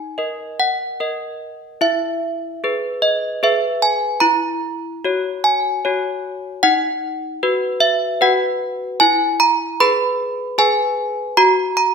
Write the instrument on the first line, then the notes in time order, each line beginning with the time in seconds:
handbells
Already playing: D#4 G#5
0.18 A#4 D#5
0.60 F#5
1.00 A#4 D#5
1.81 E4 E5
2.64 G#4 B4
3.02 D#5
3.43 G#4 B4 E5
3.82 G#5
4.20 E4 A#5
5.05 F#4 C#5
5.44 G#5
5.85 F#4 C#5
6.63 D#4 F#5
7.43 F#4 B4
7.80 E5
8.21 F#4 B4 F#5
9.00 E4 G#5
9.40 A#5
9.80 G#4 B4 B5
10.58 G#4 B4 G#5
11.37 F#4 A#5
11.77 A#5